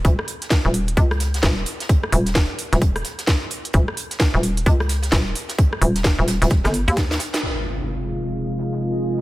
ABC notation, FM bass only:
X:1
M:4/4
L:1/16
Q:"Swing 16ths" 1/4=130
K:Fm
V:1 name="FM bass" clef=bass
E,,, z4 E,,,3 D,,4 E,,,2 z2 | z2 E,,,3 z2 E,,,3 z6 | E,,, z4 E,,,3 D,,4 E,,,2 z2 | z2 E,,,3 E,,,2 E,,,2 G,,,2 E,,3 z2 |
z16 |]